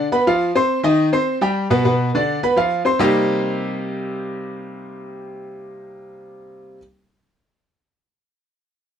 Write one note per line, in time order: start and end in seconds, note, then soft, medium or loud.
0.12 0.24 B3 medium
0.12 0.24 B4 medium
0.12 0.24 B5 medium
0.27 0.50 F3 medium
0.27 0.50 F4 medium
0.27 0.50 F5 medium
0.55 0.79 C4 medium
0.55 0.79 C5 medium
0.55 0.79 C6 medium
0.83 1.07 D#3 medium
0.83 1.08 D#4 medium
0.83 1.08 D#5 medium
1.13 1.36 C4 medium
1.13 1.37 C5 medium
1.13 1.37 C6 medium
1.41 1.65 G3 medium
1.41 1.66 G4 medium
1.41 1.66 G5 medium
1.70 1.82 B2 medium
1.70 1.83 B3 loud
1.70 1.83 B4 medium
1.85 2.09 B2 medium
1.85 2.09 B3 medium
1.85 2.09 B4 medium
2.15 2.38 D3 medium
2.15 2.38 D4 medium
2.15 2.38 D5 medium
2.43 2.55 B3 medium
2.43 2.55 B4 medium
2.43 2.55 B5 medium
2.56 2.81 F3 medium
2.56 2.81 F4 medium
2.56 2.81 F5 medium
2.85 2.97 C4 medium
2.85 2.98 C5 medium
2.85 2.98 C6 medium
2.99 6.77 C3 medium
2.99 6.78 G3 medium
2.99 6.77 A#3 medium
2.99 6.78 C4 medium
2.99 6.78 D#4 medium
2.99 6.78 G4 loud